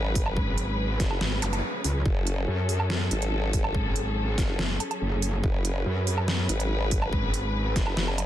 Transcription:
Already playing: G#1 F#3 C#4 G#4 B4
0.15 kick, open hi-hat
0.26 low woodblock
0.37 G#1, kick
0.58 closed hi-hat
1.00 F#1, kick, snare, open hi-hat
1.11 low woodblock
1.21 G#1, snare
1.42 F#1, closed hi-hat, zap, low woodblock
1.53 closed hi-hat, low woodblock
1.84 C#2, open hi-hat
2.06 F#1 A4, kick
2.27 closed hi-hat
2.48 F#2
2.69 open hi-hat
2.80 low woodblock
2.90 snare
3.11 G#1, closed hi-hat
3.22 closed hi-hat
3.53 kick, open hi-hat
3.64 low woodblock
3.75 G#1, kick
3.96 closed hi-hat
4.38 F#1, kick, snare, open hi-hat
4.59 F#1, snare
4.80 closed hi-hat, low woodblock
4.91 closed hi-hat, low woodblock
5.01 F#1
5.22 open hi-hat
5.43 F#1 B4, kick
5.65 closed hi-hat
5.86 F#2
6.07 open hi-hat
6.18 low woodblock
6.28 snare
6.49 G#1, closed hi-hat
6.60 closed hi-hat
6.91 kick, open hi-hat
7.02 low woodblock
7.13 G#1, kick
7.34 closed hi-hat
7.76 F#1, kick, snare, open hi-hat
7.87 low woodblock
7.97 F#1, snare
8.08 low woodblock
8.18 closed hi-hat, low woodblock

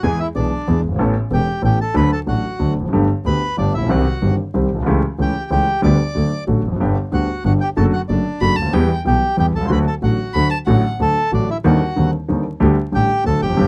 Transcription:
0.03 E2 E3 G#3 B3 G#4 G#5
0.20 E4 E5
0.35 B1 B2 E3 G#3 B3 D4 G#4 D5
0.67 E2 E3 G#3 B3 G#4
0.84 G1
0.88 F#1 G1
0.95 G#1 A1 A2 E3 B3 C#4 A4
1.00 A1
1.30 E1 E2 E3 B3 C#4 G4 A4 G5
1.62 A1 A2 E3 B3 C#4 G4 A4 G5
1.81 A4 A5
1.94 D2 D3 F#3 A3 D4 A4 B4 B5
2.13 A4 A5
2.26 A1 A2 F#3 A3 D4 F#4 A4 F#5
2.59 D2 D3 F#3 A3 D4 A4
2.77 F1 E2
2.85 F2 F#2
2.93 G1 G2 D3 A3 B3 G4
3.25 D2 D3 A3 B3 G4 B4 B5
3.57 G1 G2 D3 A3 B3 D4 G4 D5
3.74 A#1 E4 E5
3.78 A1
3.83 A#1 B1
3.89 C2 C3 D#3 G3 C4 F#4 G4 F#5
4.22 G1 G2 D#3 G3 C4 G4
4.54 C2 C3 D#3 G3 C4 G4
4.71 A#1 B1
4.78 B1
4.83 C2 C#2 C#3 E3 A3
4.87 C#2 C#4 G4
5.18 C#2 C#3 E3 A3 C#4 G4 G5
5.50 C#2 C#3 E3 A3 C#4 G4 G5
5.82 D2 D3 G3 B3 G4 D5 D6
6.15 D2 D3 F#3 A3 F#4
6.47 A1 A2 D3 F#3 A3 F#4
6.65 F1 E2
6.72 F2
6.76 F#2
6.80 G1 G2 D3 G3 B3 G4
7.12 D2 D3 G3 B3 F#4 G4 F#5
7.44 G1 G2 D3 G3 B3 F#4 G4 F#5
7.61 G4 G5
7.77 F#1 F#2 D3 F#3 A3 F#4 A4 A5
7.93 F#4 F#5
8.08 F#1 F#2 D3 F#3 A3 D4 F#4 D5
8.41 F#1 F#2 D3 F#3 A3 F#4 B5
8.56 D2 A5
8.62 C#2 D2
8.70 D#2 E3 G5
8.74 E2 G3 B3 G4
9.05 B1 B2 E3 G3 B3 G4 G5
9.37 E2 E3 G3 B3 G4 G5
9.55 B1 C2 A4 A5
9.61 C2
9.65 C#2 C6
9.69 D2 D3 F#3 A3 F#4 B4 B5
9.87 A4 A5
10.02 A1 A2 D3 F#3 A3 F#4 F#5
10.34 D2 D3 F#3 A3 F#4 B5
10.51 A5
10.67 A1 A2 D3 F#3 A3 F#4 F#5
11.00 D2 D3 F#3 A3 F#4 A4 A5
11.31 A1 A2 D3 F#3 A3 D4 F#4 D5
11.50 E4 E5
11.64 D#2 D3 D#3 G3 C4 D#4 F#4 F#5
11.96 D#2 D3 D#3 G3 C4 D#4
12.28 D#2 D3 D#3 G3 C4 D#4
12.60 D2 D3 G3 A3 G4
12.92 A1 A2 D3 G3 A3 G4 G5
13.24 D2 D3 F#3 A3 F#4 A4 A5
13.42 F1 E2 G4 G5
13.49 F2 F#2
13.56 G1 G2 D3 G3 B3 G4

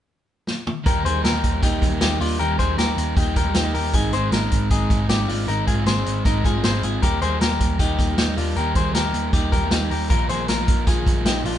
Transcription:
0.47 snare
0.67 mid tom
0.84 D#2 D#3 G3 A#3 D#4 G4 A#4, kick, closed hi-hat
1.05 D#2 D#3 G3 A#3 D#4 G#4 C5, closed hi-hat
1.24 D#2 G4 A#4, snare, closed hi-hat
1.33 A#3 D#4
1.37 G3
1.44 D#2, kick, closed hi-hat
1.62 D#2 D#3 G3 A#3 D#4 G4, kick, closed hi-hat
1.82 D#2, kick, closed hi-hat
1.91 G3 A#3 D#4
2.01 D#2 D#4 G4, snare, closed hi-hat
2.10 G3 A#3 D#4
2.20 D#2 D4 F4, open hi-hat
2.39 D#2 D#3 G3 A#3 D#4 G4 A#4, closed hi-hat
2.58 D#2 D#3 G3 A#3 D#4 G#4 C5, kick, closed hi-hat
2.78 D#2 G4 A#4, snare, closed hi-hat
2.86 G3 A#3 D#4
2.97 D#2, closed hi-hat
3.15 D#2 D#3 G3 A#3 D#4 G4, kick, closed hi-hat
3.36 D#2 G4 A#4, kick, closed hi-hat
3.45 G3 A#3 D#4
3.54 D#2 D#4 G4, snare, closed hi-hat
3.64 G3 A#3 D#4
3.74 D#2 G4 A#4, open hi-hat
3.93 G#1 D#3 G#3 C4 D#4 G#4, kick, closed hi-hat
3.98 D#4
4.13 G#1 D#3 G#3 C4 D#4 G#4 C5, closed hi-hat
4.32 G#1 D#4 A#4, snare, closed hi-hat
4.42 G#3 C4 D#4
4.51 G#1, kick, closed hi-hat
4.71 G#1 G#2 D#3 G#3 C4 D#4 G#4, kick, closed hi-hat
4.90 G#1, kick, closed hi-hat
4.99 G#3 C4 D#4
5.09 G#1 D#4 G4, snare, closed hi-hat
5.18 G#3 C4 D#4
5.28 G#1 D4 F4, open hi-hat
5.47 G#1 D#3 G#3 C4 D#4 A#4, closed hi-hat
5.67 G#1 D#3 G#3 C4 D#4 F4 G#4, kick, closed hi-hat
5.86 G#1 G#4 C5, snare, closed hi-hat
5.96 G#3 C4 D#4
6.06 G#1, closed hi-hat
6.25 G#1 G#2 D#3 G#3 C4 D#4 A#4, kick, closed hi-hat
6.44 G#1 F4 G#4, kick, closed hi-hat
6.53 C4 D#4
6.57 G#3
6.64 G#1 G#4 C5, snare, closed hi-hat
6.72 G#3 C4 D#4
6.83 G#1 F4 G#4, closed hi-hat
7.01 D#2 D#3 G3 A#3 D#4 G4 A#4, kick, closed hi-hat
7.21 D#2 D#3 G3 A#3 D#4 G#4 C5, closed hi-hat
7.41 D#2 G4 A#4, snare, closed hi-hat
7.50 G3 A#3 D#4
7.60 D#2, kick, closed hi-hat
7.79 D#2 D#3 G3 A#3 D#4 G4, kick, closed hi-hat
7.98 D#2, kick, closed hi-hat
8.09 G3 A#3 D#4
8.17 D#2 D#4 G4, snare, closed hi-hat
8.29 G3 A#3 D#4
8.37 D#2 D4 F4, open hi-hat
8.55 D#2 D#3 G3 A#3 G4 A#4, closed hi-hat
8.60 D#4
8.75 D#2 D#3 G3 A#3 G#4 C5, kick, closed hi-hat
8.79 D#4
8.94 D#2 G4 A#4, snare, closed hi-hat
9.05 G3 A#3 D#4
9.13 D#2, closed hi-hat
9.33 D#2 D#3 G3 A#3 D#4 G4, kick, closed hi-hat
9.52 D#2 G4 A#4, kick, closed hi-hat
9.62 G3 A#3 D#4
9.71 D#2 D#4 G4, snare, closed hi-hat
9.82 G3 A#3 D#4
9.91 D#2 G4 A#4, open hi-hat
10.10 A#1 D#3 F3 A#3 D#4 F4 A#4, kick, closed hi-hat
10.29 A#1 D#3 F3 A#3 G#4 C5, closed hi-hat
10.33 D#4
10.48 A#1 F4 A#4, snare, closed hi-hat
10.59 F3 A#3 D#4
10.68 A#1, kick, closed hi-hat
10.87 A#1 A#2 D#3 F3 A#3 D#4 F4 G#4, kick, closed hi-hat
11.06 A#1, kick, closed hi-hat
11.17 F3 A#3 D#4
11.25 A#1 D#4 G4, snare, closed hi-hat
11.36 F3 A#3 D#4
11.45 A#1 D4 F4, open hi-hat

